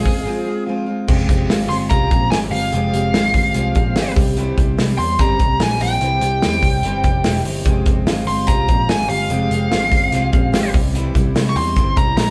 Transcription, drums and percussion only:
0.06 kick medium
0.06 hi-hat pedal medium
0.06 open hi-hat medium
1.08 kick loud
1.08 crash medium
1.29 kick medium
1.29 hi-hat pedal medium
1.29 open hi-hat medium
1.50 snare loud
1.50 hi-hat pedal medium
1.50 open hi-hat medium
1.70 hi-hat pedal medium
1.70 open hi-hat medium
1.90 kick loud
1.90 hi-hat pedal medium
1.90 open hi-hat loud
2.11 kick medium
2.11 hi-hat pedal medium
2.11 open hi-hat medium
2.31 snare loud
2.31 hi-hat pedal medium
2.31 open hi-hat loud
2.52 hi-hat pedal medium
2.52 open hi-hat medium
2.73 hi-hat pedal medium
2.73 open hi-hat medium
2.94 hi-hat pedal medium
2.94 open hi-hat medium
3.14 snare loud
3.14 hi-hat pedal medium
3.14 open hi-hat medium
3.34 kick medium
3.34 hi-hat pedal medium
3.34 open hi-hat medium
3.54 hi-hat pedal medium
3.54 open hi-hat loud
3.75 kick medium
3.75 hi-hat pedal medium
3.75 open hi-hat medium
3.96 snare loud
3.96 hi-hat pedal medium
3.96 open hi-hat loud
4.16 kick loud
4.16 hi-hat pedal medium
4.16 open hi-hat medium
4.37 hi-hat pedal medium
4.37 open hi-hat medium
4.58 kick loud
4.58 hi-hat pedal medium
4.58 open hi-hat medium
4.78 snare loud
4.78 hi-hat pedal medium
4.78 open hi-hat medium
4.99 hi-hat pedal medium
4.99 open hi-hat medium
5.19 kick loud
5.19 snare soft
5.19 hi-hat pedal medium
5.19 open hi-hat loud
5.39 kick medium
5.39 hi-hat pedal medium
5.39 open hi-hat medium
5.60 snare loud
5.60 hi-hat pedal medium
5.60 open hi-hat loud
5.80 hi-hat pedal medium
5.80 open hi-hat medium
6.01 hi-hat pedal medium
6.01 open hi-hat loud
6.21 hi-hat pedal medium
6.21 open hi-hat medium
6.42 snare loud
6.42 hi-hat pedal medium
6.42 open hi-hat medium
6.63 kick medium
6.63 hi-hat pedal medium
6.63 open hi-hat medium
6.83 hi-hat pedal medium
6.83 open hi-hat loud
7.04 kick medium
7.04 hi-hat pedal medium
7.04 open hi-hat medium
7.24 snare loud
7.24 hi-hat pedal medium
7.24 open hi-hat loud
7.45 hi-hat pedal medium
7.45 open hi-hat medium
7.65 kick loud
7.65 hi-hat pedal medium
7.65 open hi-hat medium
7.86 kick loud
7.86 hi-hat pedal medium
7.86 open hi-hat medium
8.07 snare loud
8.07 hi-hat pedal medium
8.07 open hi-hat medium
8.27 hi-hat pedal medium
8.27 open hi-hat medium
8.47 kick medium
8.47 hi-hat pedal medium
8.47 open hi-hat loud
8.68 kick medium
8.68 hi-hat pedal medium
8.68 open hi-hat medium
8.89 snare loud
8.89 hi-hat pedal medium
8.89 open hi-hat loud
9.09 hi-hat pedal medium
9.09 open hi-hat medium
9.30 hi-hat pedal medium
9.30 open hi-hat medium
9.51 hi-hat pedal medium
9.51 open hi-hat medium
9.71 snare loud
9.71 hi-hat pedal medium
9.71 open hi-hat medium
9.92 kick loud
9.92 hi-hat pedal medium
9.92 open hi-hat medium
10.12 snare soft
10.12 hi-hat pedal medium
10.12 open hi-hat loud
10.33 kick loud
10.33 hi-hat pedal medium
10.33 open hi-hat medium
10.53 snare loud
10.53 hi-hat pedal medium
10.53 open hi-hat loud
10.74 kick loud
10.74 hi-hat pedal medium
10.74 open hi-hat medium
10.95 hi-hat pedal medium
10.95 open hi-hat medium
11.15 kick medium
11.15 hi-hat pedal medium
11.15 open hi-hat medium
11.35 snare loud
11.35 hi-hat pedal medium
11.35 open hi-hat medium
11.56 hi-hat pedal medium
11.56 open hi-hat medium
11.76 kick loud
11.76 snare soft
11.76 hi-hat pedal medium
11.76 open hi-hat loud
11.97 kick loud
11.97 hi-hat pedal medium
11.97 open hi-hat medium
12.17 snare loud
12.17 hi-hat pedal medium
12.17 open hi-hat loud

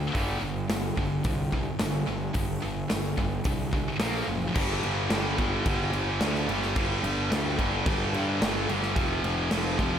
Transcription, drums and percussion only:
0.15 kick medium
0.15 open hi-hat soft
0.70 snare loud
0.70 open hi-hat soft
0.97 kick medium
1.24 kick loud
1.24 open hi-hat soft
1.52 kick medium
1.79 snare loud
1.79 open hi-hat medium
2.34 kick loud
2.34 open hi-hat soft
2.90 snare loud
2.90 open hi-hat medium
3.18 kick medium
3.44 kick loud
3.44 open hi-hat medium
3.73 kick medium
4.00 snare loud
4.00 open hi-hat medium
4.55 kick loud
4.55 crash loud
4.55 crash medium
4.83 crash medium
5.10 snare loud
5.10 crash medium
5.38 kick medium
5.38 crash medium
5.66 kick loud
5.66 crash medium
5.93 crash medium
6.21 snare loud
6.21 crash medium
6.35 snare soft
6.49 crash medium
6.62 snare soft
6.76 kick loud
6.76 crash medium
7.04 crash medium
7.32 snare loud
7.32 crash medium
7.59 kick medium
7.59 crash medium
7.86 kick loud
7.86 crash medium
8.14 crash medium
8.42 snare loud
8.42 crash medium
8.69 crash medium
8.83 snare soft
8.96 kick loud
8.96 crash medium
9.24 crash medium
9.51 snare loud
9.51 crash medium
9.79 kick medium
9.79 crash medium

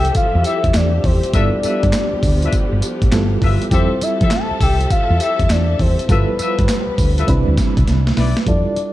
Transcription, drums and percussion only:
0.05 closed hi-hat medium
0.15 kick medium
0.15 closed hi-hat medium
0.15 tambourine medium
0.44 closed hi-hat medium
0.44 tambourine medium
0.64 kick medium
0.64 closed hi-hat medium
0.74 snare loud
0.74 clap medium
0.74 closed hi-hat medium
0.74 tambourine medium
1.04 kick loud
1.04 open hi-hat medium
1.23 closed hi-hat medium
1.34 kick loud
1.34 closed hi-hat medium
1.34 tambourine medium
1.63 closed hi-hat medium
1.63 tambourine medium
1.83 kick medium
1.83 closed hi-hat medium
1.93 snare loud
1.93 clap loud
1.93 closed hi-hat medium
1.93 tambourine medium
2.23 kick loud
2.23 open hi-hat medium
2.23 tambourine medium
2.42 closed hi-hat medium
2.53 kick medium
2.53 closed hi-hat medium
2.53 tambourine medium
2.82 closed hi-hat medium
2.82 tambourine medium
3.02 kick medium
3.02 closed hi-hat medium
3.12 snare loud
3.12 clap loud
3.12 closed hi-hat medium
3.12 tambourine medium
3.42 kick medium
3.42 open hi-hat medium
3.62 closed hi-hat medium
3.71 kick loud
3.71 closed hi-hat medium
3.71 tambourine medium
4.01 closed hi-hat medium
4.01 tambourine medium
4.21 kick medium
4.21 closed hi-hat medium
4.31 snare loud
4.31 clap loud
4.31 closed hi-hat medium
4.31 tambourine medium
4.61 kick medium
4.61 open hi-hat medium
4.61 tambourine medium
4.81 closed hi-hat medium
4.90 kick medium
4.90 closed hi-hat medium
4.90 tambourine medium
5.20 closed hi-hat medium
5.20 tambourine medium
5.39 kick medium
5.39 closed hi-hat medium
5.50 snare loud
5.50 clap medium
5.50 closed hi-hat medium
5.50 tambourine medium
5.79 kick medium
5.79 open hi-hat medium
5.99 closed hi-hat medium
6.09 kick loud
6.09 closed hi-hat medium
6.09 tambourine medium
6.39 closed hi-hat medium
6.39 tambourine medium
6.59 kick medium
6.59 closed hi-hat medium
6.69 snare loud
6.69 clap loud
6.69 closed hi-hat medium
6.69 tambourine medium
6.98 kick loud
6.98 open hi-hat medium
6.98 tambourine medium
7.18 closed hi-hat medium
7.28 kick medium
7.28 closed hi-hat medium
7.28 tambourine medium
7.57 kick medium
7.57 snare medium
7.57 closed hi-hat medium
7.57 tambourine medium
7.77 kick medium
7.77 closed hi-hat medium
7.88 snare medium
7.88 closed hi-hat medium
8.07 snare medium
8.17 snare loud
8.17 open hi-hat medium
8.37 snare loud
8.37 closed hi-hat medium
8.46 kick loud
8.46 closed hi-hat medium
8.76 closed hi-hat medium

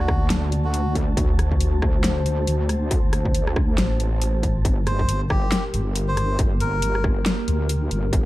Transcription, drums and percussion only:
0.08 kick loud
0.08 cross-stick medium
0.30 snare loud
0.30 closed hi-hat medium
0.52 closed hi-hat soft
0.74 closed hi-hat medium
0.95 kick medium
0.95 closed hi-hat medium
1.17 kick loud
1.17 closed hi-hat medium
1.39 cross-stick medium
1.39 closed hi-hat medium
1.52 kick medium
1.61 closed hi-hat medium
1.82 kick loud
1.82 cross-stick medium
2.04 snare loud
2.04 closed hi-hat medium
2.26 closed hi-hat medium
2.47 closed hi-hat medium
2.69 cross-stick medium
2.69 closed hi-hat medium
2.91 kick loud
2.91 closed hi-hat medium
3.13 cross-stick medium
3.13 closed hi-hat medium
3.25 kick medium
3.35 closed hi-hat medium
3.47 cross-stick medium
3.56 kick loud
3.56 cross-stick medium
3.78 snare loud
3.78 closed hi-hat medium
4.00 closed hi-hat medium
4.22 closed hi-hat medium
4.43 kick medium
4.43 closed hi-hat medium
4.65 kick loud
4.65 closed hi-hat medium
4.87 cross-stick medium
4.87 closed hi-hat medium
4.99 kick medium
5.09 closed hi-hat medium
5.30 kick loud
5.30 cross-stick medium
5.52 snare loud
5.52 closed hi-hat medium
5.74 closed hi-hat medium
5.96 closed hi-hat medium
6.17 cross-stick medium
6.17 closed hi-hat medium
6.39 kick loud
6.39 closed hi-hat medium
6.60 closed hi-hat medium
6.82 closed hi-hat medium
6.95 cross-stick medium
7.04 kick loud
7.04 cross-stick medium
7.26 snare loud
7.26 closed hi-hat medium
7.48 closed hi-hat medium
7.69 closed hi-hat medium
7.91 closed hi-hat medium
8.13 kick loud
8.13 closed hi-hat medium

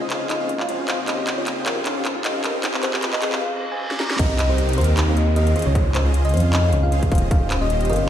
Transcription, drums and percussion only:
0.10 clap medium
0.10 closed hi-hat medium
0.30 clap medium
0.30 closed hi-hat medium
0.49 closed hi-hat medium
0.60 clap medium
0.69 closed hi-hat medium
0.88 clap medium
0.88 closed hi-hat medium
1.08 clap medium
1.08 closed hi-hat medium
1.27 clap medium
1.27 closed hi-hat medium
1.47 clap medium
1.47 closed hi-hat medium
1.66 clap medium
1.66 closed hi-hat medium
1.86 clap medium
1.86 closed hi-hat medium
2.05 clap medium
2.05 closed hi-hat medium
2.25 clap medium
2.25 closed hi-hat medium
2.44 clap medium
2.44 closed hi-hat medium
2.64 clap medium
2.64 closed hi-hat medium
2.74 clap medium
2.83 clap loud
2.83 closed hi-hat medium
2.94 clap medium
3.03 clap loud
3.03 closed hi-hat medium
3.13 clap medium
3.22 clap loud
3.22 closed hi-hat medium
3.32 clap medium
3.91 snare medium
4.00 snare medium
4.10 snare medium
4.19 kick loud
4.19 closed hi-hat medium
4.19 crash loud
4.39 clap medium
4.39 closed hi-hat medium
4.58 closed hi-hat medium
4.69 closed hi-hat medium
4.73 closed hi-hat medium
4.78 closed hi-hat medium
4.81 closed hi-hat medium
4.84 closed hi-hat medium
4.97 clap loud
4.97 closed hi-hat medium
5.17 closed hi-hat medium
5.36 closed hi-hat medium
5.47 closed hi-hat medium
5.56 closed hi-hat medium
5.59 closed hi-hat medium
5.62 closed hi-hat medium
5.75 kick loud
5.75 closed hi-hat medium
5.95 clap medium
5.95 closed hi-hat medium
6.14 closed hi-hat medium
6.25 closed hi-hat soft
6.29 closed hi-hat medium
6.34 closed hi-hat medium
6.37 closed hi-hat medium
6.40 closed hi-hat medium
6.53 clap loud
6.53 closed hi-hat medium
6.73 closed hi-hat medium
6.92 closed hi-hat medium
7.03 kick medium
7.03 closed hi-hat medium
7.12 kick loud
7.12 closed hi-hat medium
7.15 closed hi-hat medium
7.18 closed hi-hat medium
7.31 kick loud
7.31 closed hi-hat medium
7.51 clap medium
7.51 closed hi-hat medium
7.70 closed hi-hat medium
7.81 closed hi-hat soft
7.85 closed hi-hat medium
7.89 closed hi-hat soft
7.93 closed hi-hat medium
7.96 closed hi-hat medium

